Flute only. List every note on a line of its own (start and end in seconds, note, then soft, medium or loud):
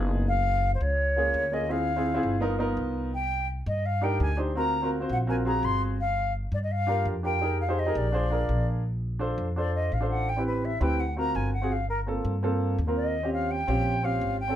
0.28 0.71 F5 loud
0.74 0.83 C5 medium
0.82 1.55 C#5 loud
1.53 1.73 D#5 medium
1.71 2.42 F5 loud
3.14 3.47 G5 medium
3.67 3.87 D#5 medium
3.85 4.05 F5 medium
4.04 4.21 G5 medium
4.22 4.38 G#5 medium
4.57 4.90 A#5 loud
5.12 5.18 F#5 medium
5.29 5.35 G#5 loud
5.47 5.66 A#5 medium
5.64 5.82 C6 loud
6.00 6.33 F5 loud
6.54 6.58 D5 medium
6.63 6.73 D#5 medium
6.71 7.07 F5 medium
7.25 7.58 G5 loud
7.61 7.80 F5 medium
7.79 7.98 D#5 medium
7.97 8.68 D5 medium
9.57 9.73 D5 medium
9.75 9.95 D#5 medium
9.93 10.09 F5 medium
10.10 10.30 F#5 medium
10.29 10.46 G5 medium
10.47 10.66 B4 medium
10.65 10.81 E5 medium
10.82 11.01 G5 loud
11.00 11.17 F#5 medium
11.18 11.37 A#5 loud
11.36 11.53 G#5 medium
11.53 11.73 F#5 medium
11.72 11.89 F5 medium
11.89 12.00 A#4 medium
12.97 13.30 D#5 medium
13.33 13.52 F5 medium
13.51 14.06 G5 loud
14.04 14.39 F5 medium
14.40 14.56 G5 medium